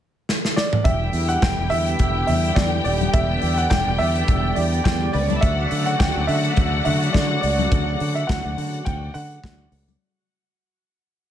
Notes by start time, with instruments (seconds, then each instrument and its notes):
0.29 snare
0.45 snare
0.56 grand piano D5, snare
0.73 mid tom
0.84 fingered electric bass E1, analog synth pad D3 G3 B3 E4, string section G4 G5, grand piano E5, kick, closed hi-hat, muted conga
1.13 fingered electric bass E2, open hi-hat
1.28 grand piano F#5, closed hi-hat
1.42 fingered electric bass E1, grand piano G5, kick, snare, closed hi-hat, high conga
1.58 fingered electric bass E1
1.70 fingered electric bass E2, grand piano E5, open hi-hat, muted conga
1.87 closed hi-hat
1.99 fingered electric bass E1, kick, closed hi-hat, muted conga
2.27 fingered electric bass E2, grand piano E5, open hi-hat, low conga
2.45 closed hi-hat
2.55 fingered electric bass E2, grand piano D5, kick, snare, closed hi-hat, high conga
2.84 fingered electric bass D#1, grand piano D5, open hi-hat
3.01 closed hi-hat, high conga
3.13 fingered electric bass E1, analog synth pad D5, grand piano E5, kick, closed hi-hat, muted conga
3.42 fingered electric bass E2, open hi-hat
3.57 grand piano F#5, closed hi-hat
3.70 fingered electric bass E1, grand piano G5, kick, snare, closed hi-hat, high conga
3.87 fingered electric bass E1
3.98 fingered electric bass E2, grand piano E5, open hi-hat, muted conga
4.15 closed hi-hat
4.28 fingered electric bass E1, kick, closed hi-hat, muted conga
4.55 fingered electric bass E2, grand piano D5, open hi-hat
4.73 closed hi-hat
4.84 fingered electric bass E2, grand piano G5, kick, snare, closed hi-hat, high conga
5.13 fingered electric bass C#2, string section B3 B4, grand piano D5, open hi-hat
5.21 string section C#4 C#5
5.30 string section D4 D5, closed hi-hat, high conga
5.35 string section E4 E5
5.41 fingered electric bass D2, analog synth pad C#3 F#3 A3, string section F#4 F#5, grand piano E5, kick, closed hi-hat
5.71 fingered electric bass D3, open hi-hat
5.86 grand piano F#5, closed hi-hat
5.99 fingered electric bass D2, grand piano G5, kick, snare, closed hi-hat, high conga
6.16 fingered electric bass D2
6.27 fingered electric bass D3, grand piano E5, open hi-hat, muted conga
6.45 closed hi-hat
6.56 fingered electric bass D2, kick, closed hi-hat, muted conga
6.85 fingered electric bass D3, grand piano E5, open hi-hat, low conga
7.03 closed hi-hat
7.13 fingered electric bass D3, grand piano D5, kick, snare, closed hi-hat, high conga
7.41 fingered electric bass C#2, grand piano D5, open hi-hat
7.59 closed hi-hat, high conga
7.72 fingered electric bass D2, kick, closed hi-hat, muted conga
8.00 fingered electric bass D3, open hi-hat
8.15 grand piano E5, closed hi-hat
8.27 fingered electric bass D2, grand piano F#5, kick, snare, closed hi-hat, high conga
8.45 fingered electric bass D2
8.57 fingered electric bass D3, open hi-hat, muted conga
8.74 closed hi-hat
8.85 fingered electric bass D2, grand piano G5, kick, closed hi-hat, muted conga
9.14 fingered electric bass D3, grand piano F#5, open hi-hat
9.32 closed hi-hat
9.43 fingered electric bass D2, kick, snare, closed hi-hat, high conga
9.72 fingered electric bass C#2, open hi-hat
9.88 closed hi-hat, high conga